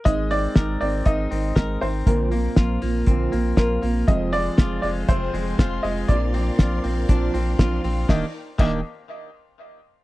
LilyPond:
<<
  \new Staff \with { instrumentName = "Upright piano" } { \time 4/4 \key aes \lydian \tempo 4 = 120 ees''8 d''4 d''8 ees''4. c''8 | bes'2. bes'4 | ees''8 d''4 d''8 c''4. ees''8 | d''2.~ d''8 r8 |
ees''8 r8 ees''8 r2 r8 | }
  \new Staff \with { instrumentName = "String machine" } { \time 4/4 \key aes \lydian << { r1 | r1 | <f'' c'''>1~ | <f'' c'''>1 |
<ees' bes' d'' g''>8 r2. r8 | } \\ { r1 | r1 | <aes' c''>1 | <bes' d''>1 |
r1 | } >> }
  \new Staff \with { instrumentName = "Clean electric guitar" } { \time 4/4 \key aes \lydian aes8 c'8 bes'8 c'8 ees'8 c'8 bes'8 c'8 | bes,8 bes8 f'8 bes8 c'8 bes8 f'8 bes8 | f,8 aes8 f'8 aes8 c'8 aes8 f'8 aes8 | bes,8 c'8 f'8 c'8 d'8 c'8 f'8 c'8 |
<ees bes d' g'>8 r8 <ees bes d' g'>8 r2 r8 | }
  \new Staff \with { instrumentName = "Steel-string acoustic guitar" } { \time 4/4 \key aes \lydian <aes c' ees' bes'>8 <c' ees' bes'>8 <aes c' ees' bes'>8 <c' ees' bes'>8 <aes c' ees' bes'>8 <c' ees' bes'>8 <aes c' ees' bes'>8 <c' ees' bes'>8 | <bes, d f bes c' f'>8 <f bes c' f'>8 <f bes c' f'>8 <f bes c' f'>8 <bes, d f bes c' f'>8 <f bes c' f'>8 <f bes c' f'>8 <f bes c' f'>8 | <f, c f aes c' f'>8 c'8 <f aes c'>8 <f c' f'>8 <f, c f aes c' f'>8 <f aes c' f'>8 <f aes c' f'>8 <f aes c' f'>8 | <bes, f c' d' f'>8 <c' d' f'>8 <f c' d' f'>8 <c' d' f'>8 <bes, f c' d' f'>8 <c' d' f'>8 <f c' d' f'>8 <c' d' f'>8 |
<ees bes d' g'>8 r8 <ees bes d' g'>8 r2 r8 | }
  \new Staff \with { instrumentName = "Sub bass" } { \clef bass \time 4/4 \key aes \lydian aes,,4 aes,,8 aes,,8 aes,,8 aes,,8 aes,,8 aes,,8 | bes,,4 bes,,8 bes,,8 bes,,8 bes,,8 bes,,8 bes,,8 | f,,4 f,,8 f,,8 f,,8 f,,8 f,,8 f,,8 | bes,,4 bes,,8 bes,,8 bes,,8 bes,,8 bes,,8 bes,,8 |
ees,,8 r8 ees,,8 r2 r8 | }
  \new DrumStaff \with { instrumentName = "Drums" } \drummode { \time 4/4 <hh bd>8 hho8 <hh bd sn>8 hho8 <hh bd>8 hho8 <hh bd sn>8 hho8 | <hh bd>8 hho8 <hh bd sn>8 hho8 <hh bd>8 hho8 <hh bd sn>8 hho8 | <hh bd>8 hho8 <hh bd sn>8 hho8 <hh bd>8 hho8 <hh bd sn>8 hho8 | <hh bd>8 hho8 <hh bd sn>8 hho8 <hh bd>8 hho8 <hh bd sn>8 hho8 |
<bd sn>4 <cymc bd>4 r4 r4 | }
>>